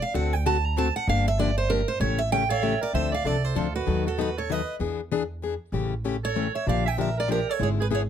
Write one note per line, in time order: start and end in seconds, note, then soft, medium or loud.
0.02 0.14 F5 loud
0.14 0.89 D2 loud
0.14 0.34 D3 medium
0.14 0.34 A3 medium
0.14 0.34 C4 medium
0.14 0.34 F#4 medium
0.14 0.34 A4 medium
0.14 0.33 F#5 medium
0.33 0.45 G5 loud
0.46 0.56 D3 loud
0.46 0.56 A3 loud
0.46 0.57 C4 medium
0.46 0.56 F#4 loud
0.46 0.57 A4 loud
0.46 0.66 A5 loud
0.66 0.77 A#5 loud
0.76 0.87 D3 medium
0.76 0.87 A3 medium
0.76 0.87 C4 medium
0.76 0.88 F#4 medium
0.76 0.88 A4 loud
0.76 0.95 A5 loud
0.96 1.08 F#5 loud
1.07 1.82 G1 loud
1.07 1.27 D3 medium
1.07 1.27 F3 medium
1.07 1.28 A#3 medium
1.07 1.28 D4 medium
1.07 1.28 G4 medium
1.07 1.26 F5 medium
1.28 1.39 E5 loud
1.39 1.49 D3 loud
1.39 1.49 F3 loud
1.39 1.50 A#3 loud
1.39 1.50 D4 loud
1.39 1.50 G4 loud
1.39 1.57 D5 loud
1.58 1.70 C5 medium
1.70 1.80 D3 medium
1.70 1.80 F3 medium
1.70 1.81 A#3 loud
1.70 1.81 D4 medium
1.70 1.81 G4 medium
1.70 1.87 A#4 loud
1.88 2.00 C5 medium
2.00 2.75 A1 loud
2.00 2.20 C#3 medium
2.00 2.20 E3 medium
2.00 2.20 A3 medium
2.00 2.21 C#4 medium
2.00 2.21 G4 medium
2.00 2.18 C#5 medium
2.19 2.31 E5 loud
2.32 2.43 C#3 loud
2.32 2.42 E3 medium
2.32 2.43 A3 loud
2.32 2.43 C#4 loud
2.32 2.43 G4 loud
2.32 2.50 G5 loud
2.50 2.79 A4 medium
2.50 2.79 C#5 loud
2.50 2.64 F5 loud
2.62 2.73 C#3 medium
2.62 2.73 E3 medium
2.62 2.73 A3 loud
2.62 2.73 C#4 medium
2.62 2.74 G4 loud
2.62 2.82 E5 loud
2.81 2.93 A#4 medium
2.81 2.94 D5 medium
2.93 3.18 D2 medium
2.93 3.14 D3 medium
2.93 3.14 F3 medium
2.93 3.14 C4 medium
2.93 3.14 D4 medium
2.93 3.14 A4 medium
2.93 3.11 C5 medium
2.93 3.13 E5 medium
3.12 3.27 D5 medium
3.12 3.27 F5 medium
3.24 3.51 C2 medium
3.24 3.35 D3 medium
3.24 3.35 F3 medium
3.24 3.36 C4 medium
3.24 3.36 D4 medium
3.24 3.44 A4 medium
3.24 3.36 A4 medium
3.24 3.44 D5 medium
3.44 3.56 A4 medium
3.44 3.57 C5 medium
3.55 3.82 D2 medium
3.55 3.66 D3 medium
3.55 3.66 F3 medium
3.55 3.66 C4 medium
3.55 3.67 D4 medium
3.55 3.74 F4 medium
3.55 3.67 A4 medium
3.55 3.75 A4 medium
3.76 4.04 F#4 medium
3.76 4.04 B4 medium
3.86 4.62 D#2 medium
3.86 4.06 D#3 medium
3.86 4.07 F#3 medium
3.86 4.07 B3 medium
3.86 4.07 D#4 medium
3.86 4.07 A4 medium
4.06 4.18 F#4 medium
4.06 4.20 A4 medium
4.18 4.28 D#3 medium
4.18 4.29 F#3 medium
4.18 4.29 B3 medium
4.18 4.29 D#4 medium
4.18 4.36 F#4 medium
4.18 4.29 A4 medium
4.18 4.37 B4 medium
4.38 4.53 A4 medium
4.38 4.52 C#5 medium
4.50 4.60 D#3 medium
4.50 4.60 F#3 medium
4.50 4.60 B3 medium
4.50 4.60 D#4 medium
4.50 4.60 A4 medium
4.50 4.75 B4 medium
4.50 4.75 D#5 medium
4.79 5.54 E2 medium
4.79 5.00 E3 medium
4.79 5.00 B3 medium
4.79 5.00 D4 medium
4.79 5.00 G#4 medium
5.12 5.22 E3 medium
5.12 5.22 B3 medium
5.12 5.22 D4 medium
5.12 5.23 G#4 medium
5.42 5.53 E3 medium
5.42 5.54 B3 medium
5.42 5.54 D4 medium
5.42 5.54 G#4 medium
5.72 6.47 A1 medium
5.72 5.93 C#3 medium
5.72 5.93 E3 medium
5.72 5.93 A3 medium
5.72 5.93 C#4 medium
5.72 5.93 G4 medium
6.04 6.15 C#3 medium
6.04 6.15 E3 medium
6.04 6.15 A3 medium
6.04 6.16 C#4 medium
6.04 6.16 G4 medium
6.24 6.52 A4 medium
6.24 6.56 C#5 medium
6.36 6.46 C#3 medium
6.36 6.46 E3 medium
6.36 6.47 A3 medium
6.36 6.47 C#4 medium
6.36 6.47 G4 medium
6.55 6.66 C#5 medium
6.55 6.67 E5 medium
6.66 7.41 A#1 medium
6.66 6.86 D3 medium
6.66 6.87 F3 medium
6.66 6.87 A#3 medium
6.66 6.87 D4 medium
6.66 6.87 G4 medium
6.66 6.87 D5 medium
6.66 6.88 F5 medium
6.86 6.98 E5 medium
6.86 6.99 G5 medium
6.97 7.08 D3 medium
6.97 7.09 F3 medium
6.97 7.09 A#3 medium
6.97 7.09 D4 medium
6.97 7.09 G4 loud
6.97 7.16 A#4 medium
6.97 7.17 E5 medium
7.17 7.29 A#4 medium
7.17 7.30 D5 medium
7.28 7.39 D3 medium
7.28 7.39 F3 medium
7.28 7.39 A#3 medium
7.28 7.39 D4 medium
7.28 7.40 G4 medium
7.28 7.50 G4 medium
7.28 7.51 A#4 medium
7.49 7.61 A4 medium
7.49 7.62 C#5 medium
7.59 8.10 G#1 medium
7.59 7.79 D3 medium
7.59 7.79 G#3 medium
7.59 7.79 B3 medium
7.59 7.80 E4 medium
7.59 7.80 G#4 medium
7.59 7.70 G#4 medium
7.59 7.68 C#5 medium
7.80 7.86 G#4 medium
7.80 7.87 B4 medium
7.90 8.01 D3 medium
7.90 8.02 G#3 medium
7.90 8.02 B3 medium
7.90 8.02 E4 medium
7.90 8.02 G#4 medium
7.90 8.01 G#4 medium
7.95 8.00 C#5 medium